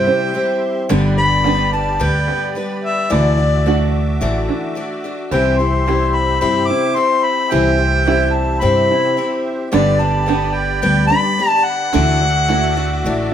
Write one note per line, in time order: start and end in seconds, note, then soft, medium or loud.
0.00 0.36 C3 medium
0.00 0.89 E3 medium
0.00 0.33 G3 medium
0.00 0.96 G3 medium
0.00 0.33 C4 medium
0.00 0.34 E4 medium
0.00 0.97 E4 medium
0.00 0.34 G4 medium
0.00 3.08 G4 medium
0.00 0.87 E5 medium
0.00 0.63 G5 medium
0.00 0.87 C6 medium
0.07 0.96 C4 medium
0.34 0.89 G3 medium
0.34 0.90 C4 medium
0.34 0.90 E4 medium
0.34 0.90 G4 medium
0.89 1.98 G1 loud
0.89 1.18 G2 loud
0.89 1.18 D3 loud
0.89 3.11 D3 medium
0.89 1.18 G3 loud
0.89 1.17 B3 loud
0.89 1.17 D4 loud
0.89 1.16 B4 loud
0.89 3.10 D5 medium
0.89 3.09 B5 medium
1.17 1.44 G3 soft
1.17 1.45 B3 soft
1.17 1.45 D4 medium
1.17 1.46 B4 soft
1.17 1.70 B5 loud
1.44 3.16 G3 medium
1.44 1.73 G3 medium
1.44 2.27 B3 medium
1.44 1.72 B3 medium
1.44 3.17 D4 medium
1.44 1.72 D4 medium
1.44 1.72 B4 medium
1.73 1.99 G3 soft
1.73 1.99 B3 soft
1.73 2.00 D4 soft
1.73 2.00 B4 medium
1.73 2.04 A5 medium
2.00 2.27 D2 medium
2.00 2.56 G2 medium
2.00 2.56 D3 medium
2.00 2.54 G3 medium
2.00 2.55 B3 medium
2.00 2.56 D4 medium
2.00 2.56 B4 medium
2.00 2.57 G5 medium
2.28 3.17 B3 medium
2.55 3.10 G3 medium
2.55 3.10 B3 medium
2.55 3.09 D4 medium
2.55 3.10 B4 medium
2.84 3.13 E5 loud
3.10 4.18 D2 loud
3.10 3.38 D3 medium
3.10 3.38 E3 medium
3.10 5.30 E3 medium
3.10 3.38 A3 medium
3.10 3.38 D4 medium
3.10 5.29 F#4 medium
3.10 3.37 F#4 medium
3.10 3.36 D5 medium
3.10 3.94 D5 loud
3.10 9.68 E5 medium
3.10 5.29 D6 medium
3.38 3.65 A3 soft
3.38 3.65 D4 soft
3.38 3.66 F#4 soft
3.38 3.66 D5 medium
3.66 4.20 A3 medium
3.66 5.37 A3 medium
3.66 4.21 D4 medium
3.66 4.48 D4 medium
3.66 4.21 F#4 medium
3.66 5.38 F#4 medium
3.66 4.21 D5 medium
4.21 4.48 A1 medium
4.21 4.76 D3 medium
4.21 4.79 E3 medium
4.21 4.74 A3 medium
4.21 4.75 D4 medium
4.21 4.76 F#4 medium
4.21 4.76 D5 medium
4.49 5.37 D4 medium
4.75 5.04 A3 medium
4.75 5.04 D4 medium
4.75 5.04 F#4 medium
4.75 5.03 D5 medium
5.04 5.31 A3 soft
5.04 5.32 D4 soft
5.04 5.32 F#4 soft
5.04 5.32 D5 medium
5.31 6.38 C2 medium
5.31 5.59 C3 medium
5.31 7.50 E3 medium
5.31 5.60 C4 medium
5.31 5.59 E4 medium
5.31 9.69 G4 medium
5.31 5.58 G4 medium
5.31 5.58 C5 medium
5.31 9.70 C5 medium
5.31 5.60 G5 medium
5.58 5.86 E4 soft
5.58 5.87 G4 soft
5.58 5.87 C5 medium
5.58 6.16 C6 medium
5.86 8.06 G3 medium
5.86 6.40 C4 soft
5.86 6.40 E4 medium
5.86 6.69 E4 medium
5.86 6.41 G4 medium
5.86 8.07 G4 medium
5.86 6.41 C5 medium
6.15 6.40 B5 medium
6.41 6.69 G2 medium
6.41 6.97 C3 medium
6.41 6.95 C4 medium
6.41 6.95 E4 medium
6.41 6.97 G4 medium
6.41 6.97 C5 medium
6.41 6.68 B5 loud
6.67 8.06 E4 medium
6.67 6.97 D6 loud
6.95 7.51 C4 medium
6.95 7.51 E4 medium
6.95 7.51 G4 medium
6.95 7.51 C5 medium
6.95 7.25 C6 loud
7.24 7.53 B5 medium
7.51 8.59 C2 medium
7.51 7.79 C3 medium
7.51 9.72 E3 medium
7.51 7.80 C4 medium
7.51 7.78 E4 medium
7.51 7.77 G4 medium
7.51 7.77 C5 medium
7.51 8.34 G5 loud
7.78 8.05 E4 soft
7.78 8.06 G4 soft
7.78 8.06 C5 medium
8.06 9.78 G3 medium
8.06 8.61 C4 medium
8.06 8.61 E4 medium
8.06 8.90 E4 medium
8.06 8.62 G4 medium
8.06 9.79 G4 medium
8.06 8.62 C5 medium
8.33 8.61 A5 medium
8.60 8.89 G2 loud
8.60 9.17 C3 medium
8.60 9.16 C4 medium
8.60 9.17 E4 medium
8.60 9.17 G4 medium
8.60 9.17 C5 medium
8.60 9.44 B5 medium
8.91 9.79 E4 medium
9.17 9.72 C4 medium
9.17 9.72 E4 medium
9.17 9.72 G4 medium
9.17 9.73 C5 medium
9.71 10.80 G1 loud
9.71 10.00 G2 medium
9.71 11.91 D3 medium
9.71 10.00 G3 medium
9.71 10.00 B3 medium
9.71 9.99 D4 medium
9.71 11.91 G4 medium
9.71 9.99 G4 medium
9.71 9.98 B4 loud
9.71 11.91 D5 medium
9.71 10.02 D5 loud
9.71 11.90 B5 medium
9.99 10.25 B3 soft
9.99 10.26 D4 soft
9.99 10.27 G4 soft
9.99 10.27 B4 medium
9.99 10.55 A5 medium
10.26 10.82 B3 medium
10.26 11.99 B3 medium
10.26 10.82 D4 medium
10.26 11.09 D4 medium
10.26 10.82 G4 medium
10.26 12.00 G4 medium
10.26 10.82 B4 medium
10.54 10.81 G5 medium
10.81 11.10 D2 medium
10.81 11.38 G2 medium
10.81 11.38 G3 medium
10.81 11.38 B3 medium
10.81 11.38 D4 medium
10.81 11.38 G4 medium
10.81 11.38 B4 medium
10.81 11.06 G5 loud
11.07 11.99 D4 medium
11.07 11.49 B5 loud
11.39 11.93 B3 medium
11.39 11.93 D4 medium
11.39 11.94 G4 medium
11.39 11.94 B4 medium
11.49 11.65 A5 loud
11.64 13.34 F#5 loud
11.93 13.01 D2 loud
11.93 13.34 D3 medium
11.93 12.21 D3 medium
11.93 12.21 E3 medium
11.93 12.21 A3 medium
11.93 12.21 D4 medium
11.93 13.34 F#4 medium
11.93 12.20 F#4 medium
11.93 12.19 D5 loud
11.93 13.34 E5 medium
11.93 13.34 D6 medium
12.21 12.47 A3 soft
12.21 12.47 D4 soft
12.21 12.48 F#4 soft
12.21 12.48 D5 medium
12.48 12.76 A3 medium
12.48 13.34 A3 medium
12.48 12.76 D4 medium
12.48 13.30 E4 medium
12.48 12.75 F#4 medium
12.48 13.34 F#4 medium
12.48 12.75 D5 medium
12.76 13.04 A3 soft
12.76 13.04 D4 soft
12.76 13.04 F#4 medium
12.76 13.04 D5 medium
13.04 13.30 A1 medium
13.04 13.34 D3 medium
13.04 13.34 E3 medium
13.04 13.34 A3 medium
13.04 13.34 D4 medium
13.04 13.34 F#4 medium
13.04 13.34 D5 medium